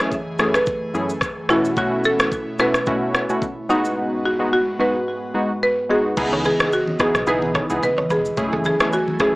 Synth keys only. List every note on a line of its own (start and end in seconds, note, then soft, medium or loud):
0.00 0.14 F#2 medium
0.00 0.14 A3 medium
0.00 0.14 C#4 medium
0.00 0.14 E4 medium
0.00 0.14 G#4 medium
0.39 0.56 F#2 medium
0.39 0.56 A3 medium
0.39 0.56 C#4 medium
0.39 0.57 E4 medium
0.39 0.57 G#4 medium
0.94 1.11 F#2 medium
0.94 1.11 A3 medium
0.94 1.12 C#4 medium
0.94 1.12 E4 medium
0.94 1.12 G#4 medium
1.49 1.75 B2 medium
1.49 1.75 A3 medium
1.49 1.75 C#4 medium
1.49 1.75 E4 medium
1.49 1.75 F#4 medium
1.77 2.28 B2 medium
1.77 2.28 A3 medium
1.77 2.28 C#4 medium
1.77 2.28 E4 medium
1.77 2.28 F#4 loud
2.59 2.77 B2 medium
2.59 2.77 A3 medium
2.59 2.77 C#4 medium
2.59 2.77 E4 medium
2.59 2.77 F#4 medium
2.87 3.26 B2 medium
2.87 3.26 A3 medium
2.87 3.26 C#4 medium
2.87 3.26 E4 medium
2.87 3.26 F#4 medium
3.29 3.44 B2 medium
3.29 3.45 A3 medium
3.29 3.45 C#4 medium
3.29 3.45 E4 medium
3.29 3.45 F#4 medium
3.69 4.33 G#3 medium
3.69 4.34 B3 medium
3.69 4.34 D#4 medium
3.69 4.34 F#4 loud
4.39 4.54 G#3 medium
4.39 4.55 B3 medium
4.39 4.55 D#4 medium
4.39 4.55 F#4 medium
4.79 4.97 G#3 medium
4.79 4.97 B3 medium
4.79 4.97 D#4 medium
4.79 4.97 F#4 medium
5.34 5.52 G#3 medium
5.34 5.52 B3 medium
5.34 5.52 D#4 medium
5.34 5.52 F#4 medium
5.89 6.15 G#3 medium
5.89 6.15 B3 medium
5.89 6.15 D#4 medium
5.89 6.15 F#4 medium
6.17 6.68 B3 medium
6.17 6.68 D#4 medium
6.17 6.68 E4 medium
6.17 6.68 G#4 loud
7.00 7.17 B3 medium
7.00 7.17 D#4 medium
7.00 7.17 E4 medium
7.00 7.17 G#4 medium
7.27 7.66 B3 medium
7.27 7.66 D#4 medium
7.27 7.66 E4 medium
7.27 7.66 G#4 loud
7.70 7.85 B3 medium
7.70 7.85 D#4 medium
7.70 7.85 E4 medium
7.70 7.85 G#4 medium
8.37 8.76 A3 medium
8.37 8.76 C#4 medium
8.37 8.77 E4 medium
8.37 8.77 G#4 loud
8.80 8.95 A3 medium
8.80 8.95 C#4 medium
8.80 8.95 E4 medium
8.80 8.95 G#4 medium
9.20 9.35 A3 medium
9.20 9.35 C#4 medium
9.20 9.35 E4 medium
9.20 9.35 G#4 medium